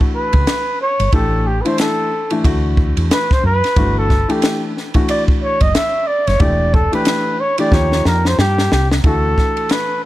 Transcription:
0.00 0.55 E3 medium
0.00 0.55 A3 medium
0.00 0.56 D4 medium
0.00 0.59 F#4 medium
0.00 kick medium
0.16 0.77 B4 loud
0.33 0.46 C#2 loud
0.33 kick medium
0.33 ride medium
0.47 snare loud
0.47 hi-hat pedal soft
0.47 ride medium
0.81 1.11 C#5 loud
1.00 1.12 G1 medium
1.00 ride medium
1.12 1.60 A1 loud
1.12 1.47 E3 medium
1.12 1.47 A3 medium
1.12 1.47 D4 medium
1.12 1.47 G4 medium
1.12 1.48 A4 loud
1.12 kick loud
1.12 ride medium
1.47 1.63 G4 medium
1.61 2.08 E3 medium
1.61 2.08 A3 medium
1.61 1.68 B4 medium
1.65 2.08 D4 medium
1.65 2.08 E4 medium
1.65 1.79 C5 medium
1.65 ride medium
1.78 2.41 A4 medium
1.78 snare medium
1.78 hi-hat pedal medium
1.78 ride medium
2.30 2.43 E3 medium
2.30 2.43 A3 medium
2.30 2.44 D4 medium
2.30 2.45 E4 medium
2.30 ride medium
2.44 2.92 D2 loud
2.44 3.51 E3 medium
2.44 3.51 A3 medium
2.44 3.52 D4 medium
2.44 3.52 F#4 medium
2.44 kick medium
2.44 ride medium
2.77 kick loud
2.97 3.09 E2 medium
2.97 ride medium
3.11 3.34 B4 loud
3.11 snare loud
3.11 hi-hat pedal medium
3.11 ride medium
3.31 3.45 C5 loud
3.31 kick loud
3.31 snare soft
3.44 3.61 F#2 medium
3.44 3.94 B4 loud
3.64 snare soft
3.64 ride medium
3.76 4.24 G1 loud
3.76 4.10 E3 medium
3.76 4.10 A3 medium
3.76 4.11 D4 medium
3.76 4.11 F#4 medium
3.76 kick loud
3.76 ride medium
3.98 4.33 A4 medium
4.10 kick medium
4.10 snare soft
4.28 4.71 E3 medium
4.28 4.71 A3 medium
4.28 4.72 D4 medium
4.28 4.63 G4 medium
4.28 4.72 A4 medium
4.28 ride medium
4.42 snare loud
4.42 hi-hat pedal soft
4.42 ride medium
4.77 snare soft
4.94 5.83 E3 medium
4.94 5.83 A3 medium
4.94 5.83 D4 medium
4.94 5.83 F#4 medium
4.94 kick medium
4.94 ride medium
5.09 5.24 D5 loud
5.09 ride medium
5.28 kick medium
5.43 5.63 C#5 loud
5.60 5.73 F#1 loud
5.60 5.76 D#5 loud
5.60 kick medium
5.60 ride medium
5.75 6.09 E5 loud
5.75 snare loud
5.75 hi-hat pedal medium
5.75 ride medium
6.07 6.29 D5 loud
6.27 6.39 F#1 medium
6.27 6.42 C#5 loud
6.27 snare soft
6.27 ride medium
6.39 6.87 E1 medium
6.39 6.74 E3 medium
6.39 6.74 A3 medium
6.39 6.74 D4 medium
6.39 6.74 G4 medium
6.39 6.76 D5 loud
6.39 kick loud
6.39 ride medium
6.74 6.93 A4 loud
6.74 kick medium
6.92 7.35 E3 medium
6.92 7.35 A3 medium
6.92 7.35 D4 medium
6.92 7.36 G4 medium
6.92 7.42 B4 medium
6.92 ride medium
7.05 snare loud
7.05 hi-hat pedal medium
7.05 ride medium
7.41 7.59 C#5 medium
7.58 7.72 E3 medium
7.58 7.72 A3 medium
7.58 7.72 D4 medium
7.58 7.71 G4 medium
7.58 7.75 D5 medium
7.58 ride medium
7.71 8.02 D#2 loud
7.71 8.79 F3 medium
7.71 8.79 A#3 medium
7.71 8.79 D#4 medium
7.71 8.79 G4 medium
7.71 8.06 C#5 loud
7.71 kick medium
7.71 snare medium
7.92 snare medium
8.05 8.35 F2 loud
8.05 8.29 A#4 medium
8.05 snare medium
8.25 8.39 C5 medium
8.25 snare medium
8.39 8.68 G2 medium
8.39 8.70 G4 loud
8.39 snare loud
8.58 snare medium
8.72 9.01 C2 medium
8.72 8.88 G4 medium
8.72 snare loud
8.91 snare loud
9.04 9.34 D2 loud
9.04 9.96 E3 medium
9.04 9.96 A3 medium
9.04 9.96 D4 medium
9.04 9.96 F#4 medium
9.04 9.73 A4 loud
9.04 kick loud
9.04 ride medium
9.38 kick medium
9.38 snare soft
9.57 ride soft
9.69 10.03 B4 loud
9.69 snare medium
9.69 hi-hat pedal soft
9.69 ride medium

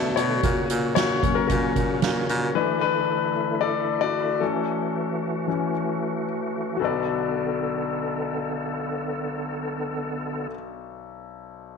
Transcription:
0.00 0.12 B2 medium
0.00 0.41 B2 medium
0.00 0.41 D3 medium
0.00 0.45 D3 soft
0.00 0.41 A3 medium
0.00 0.44 A3 soft
0.00 0.45 C#4 medium
0.00 0.45 D4 medium
0.00 0.18 F#4 medium
0.00 0.13 A4 medium
0.00 0.45 B4 medium
0.00 0.45 D5 medium
0.00 0.12 E5 medium
0.16 0.39 B2 loud
0.16 0.93 F#4 medium
0.16 0.94 C#5 medium
0.16 closed hi-hat medium
0.43 0.65 A#2 medium
0.43 2.54 C#3 medium
0.43 2.54 A#3 medium
0.43 2.54 F#4 medium
0.43 kick medium
0.43 closed hi-hat medium
0.70 0.92 A#2 medium
0.70 closed hi-hat medium
0.95 1.18 A#2 medium
0.95 1.34 F#4 medium
0.95 1.37 C#5 medium
0.95 snare loud
0.95 closed hi-hat medium
1.23 2.52 F#3 medium
1.23 2.52 A#3 soft
1.23 1.36 C#4 soft
1.23 kick medium
1.23 closed hi-hat medium
1.35 1.48 C#4 soft
1.35 1.46 A#4 medium
1.48 1.71 A#2 medium
1.48 2.25 C#4 soft
1.48 2.24 A#4 medium
1.48 kick medium
1.48 closed hi-hat medium
1.76 1.98 A#2 medium
1.76 kick medium
1.76 closed hi-hat medium
2.02 2.24 A#2 medium
2.02 snare medium
2.02 closed hi-hat medium
2.29 2.51 A#2 loud
2.29 closed hi-hat medium
2.55 4.40 D3 soft
2.55 3.31 E3 soft
2.55 3.31 A3 soft
2.55 6.77 A3 soft
2.55 2.81 D4 medium
2.55 4.40 E4 medium
2.55 2.80 B4 medium
2.81 3.58 D4 medium
2.81 3.64 B4 medium
3.61 3.99 A4 medium
3.61 3.99 D5 medium
4.01 4.39 F#4 medium
4.01 4.42 D5 loud
4.40 5.46 E3 soft
4.40 6.78 E3 medium
4.40 5.46 A3 soft
4.40 5.47 C#4 soft
4.40 6.78 F#4 medium
4.40 6.23 A4 medium
5.47 5.71 E3 soft
5.47 5.72 A3 soft
5.47 5.72 C#4 soft
6.77 10.48 B1 medium
6.77 10.48 D3 soft
6.77 10.47 B3 soft
6.77 10.45 F#4 medium
6.77 10.47 A4 medium
6.77 10.47 A4 soft
6.82 10.50 B4 medium
6.82 10.52 D5 medium

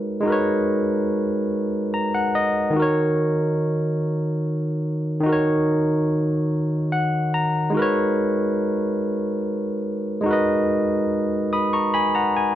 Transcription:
0.00 0.19 G#3 medium
0.00 0.20 D#4 medium
0.00 0.21 F#4 medium
0.00 0.23 A#4 medium
0.00 0.24 B4 medium
0.00 0.25 C#5 medium
0.21 2.69 G#3 medium
0.21 2.70 D#4 medium
0.25 2.71 F#4 medium
0.25 2.72 A#4 medium
0.30 2.74 B4 medium
0.30 2.75 C#5 medium
1.94 2.12 A#5 medium
2.15 2.33 F#5 medium
2.35 2.73 D#5 medium
2.70 5.19 D#3 medium
2.70 5.20 D#4 medium
2.76 5.22 F#4 medium
2.76 5.23 A#4 medium
2.82 5.25 C#5 medium
5.20 7.69 D#3 medium
5.20 7.70 D#4 medium
5.26 7.72 F#4 medium
5.26 7.73 A#4 medium
5.33 7.75 C#5 medium
6.92 7.31 F#5 medium
7.34 7.73 A#5 medium
7.70 10.19 G#3 medium
7.70 10.20 D#4 medium
7.74 10.21 F#4 medium
7.74 10.22 A#4 medium
7.79 10.23 B4 medium
7.79 10.25 C#5 medium
10.21 12.55 G#3 medium
10.21 12.55 D#4 medium
10.26 12.55 F#4 medium
10.26 12.55 A#4 medium
10.31 12.55 B4 medium
10.31 11.52 D#5 medium
11.53 11.72 B5 medium
11.53 11.71 D#6 medium
11.73 11.92 A#5 medium
11.73 11.92 C#6 medium
11.94 12.13 G#5 medium
11.94 12.13 B5 medium
12.15 12.34 F#5 medium
12.15 12.34 A#5 medium
12.37 12.55 G#5 medium

